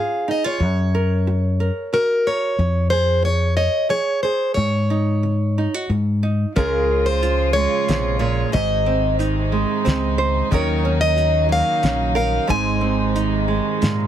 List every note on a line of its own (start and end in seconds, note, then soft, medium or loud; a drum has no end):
0.00 0.53 G#2 soft
0.00 1.27 C#4 soft
0.00 0.27 F4 soft
0.00 2.92 G#4 medium
0.00 0.30 F5 medium
0.28 0.44 D#4 medium
0.28 0.45 D#5 medium
0.44 0.60 F4 soft
0.44 1.98 C#5 medium
0.60 1.69 F#2 medium
0.60 1.19 F#3 medium
0.95 1.60 A#4 medium
1.27 1.86 F#4 soft
1.60 2.25 A#4 soft
1.93 2.52 C#3 medium
1.93 2.55 F#4 soft
1.93 2.27 A#4 medium
2.27 2.55 A#4 soft
2.27 2.90 C#5 medium
2.58 3.67 F2 medium
2.58 3.18 F3 medium
2.90 3.89 G#4 medium
2.90 3.24 C5 medium
3.22 3.83 F4 medium
3.22 3.56 C#5 medium
3.57 4.52 C#5 medium
3.57 3.87 D#5 medium
3.89 4.49 F3 medium
3.89 4.24 G#4 soft
3.89 4.22 C#5 medium
4.23 5.58 G#4 medium
4.23 4.54 C5 soft
4.54 5.16 G#2 medium
4.54 5.66 G#2 medium
4.54 5.84 C#5 medium
4.90 5.57 D#4 medium
5.23 5.82 C#3 soft
5.58 5.74 D#4 soft
5.74 5.90 F#4 soft
5.89 6.44 G#2 medium
5.89 6.49 G#2 medium
6.23 6.52 D#4 soft
6.55 7.65 C#2 medium
6.55 8.54 C#3 medium
6.55 8.52 F3 medium
6.55 10.48 G#3 medium
6.55 7.54 G#3 medium
6.55 6.89 C#4 medium
6.55 8.52 F4 medium
6.55 7.21 F4 medium
6.55 10.18 G#4 medium
6.55 7.07 A#4 medium
6.55 kick loud
6.55 closed hi-hat medium
7.06 7.52 C5 medium
7.22 8.50 F4 medium
7.22 closed hi-hat medium
7.53 8.50 G#3 medium
7.53 8.18 C#5 medium
7.88 8.43 A#1 medium
7.88 8.20 C3 medium
7.88 snare medium
7.88 closed hi-hat medium
8.19 8.52 A#2 medium
8.19 8.53 C#5 medium
8.52 9.63 G#1 medium
8.52 10.51 G#2 medium
8.52 10.49 C3 medium
8.52 10.49 D#3 medium
8.52 14.07 D#4 medium
8.52 9.16 D#5 loud
8.52 kick loud
8.52 closed hi-hat medium
8.86 9.84 C4 medium
9.19 10.53 D#4 medium
9.19 closed hi-hat soft
9.52 10.47 G#3 medium
9.85 10.40 C#2 medium
9.85 10.47 C4 medium
9.85 snare medium
9.85 closed hi-hat medium
10.18 10.47 C5 medium
10.50 11.61 D#2 medium
10.50 12.46 C#3 medium
10.50 12.45 D#3 medium
10.50 12.46 F#3 medium
10.50 11.48 F#3 medium
10.50 12.46 A#3 medium
10.50 10.84 C#4 medium
10.50 11.15 F#4 medium
10.50 11.00 C#5 medium
10.50 kick medium
10.50 closed hi-hat soft
10.54 12.14 A#4 medium
10.85 11.82 C#4 medium
11.01 11.47 D#5 medium
11.16 12.45 F#4 medium
11.16 closed hi-hat soft
11.49 12.47 F#3 medium
11.49 12.15 F5 medium
11.83 12.37 A#1 medium
11.83 12.45 C#4 medium
11.83 snare medium
11.83 closed hi-hat medium
12.15 12.44 A#4 medium
12.15 12.50 F5 medium
12.47 13.58 G#1 medium
12.47 13.80 G#2 medium
12.47 14.07 C3 medium
12.47 14.07 D#3 medium
12.47 13.48 G#3 medium
12.47 14.07 G#3 medium
12.47 12.80 C4 medium
12.47 13.14 D#4 medium
12.47 14.07 C5 medium
12.47 13.11 G#5 medium
12.47 kick medium
12.47 closed hi-hat medium
12.81 14.07 C4 medium
13.15 14.07 D#4 medium
13.15 closed hi-hat medium
13.48 14.07 G#3 medium
13.81 14.07 G#2 medium
13.81 14.07 A#2 medium
13.81 snare medium
13.81 closed hi-hat medium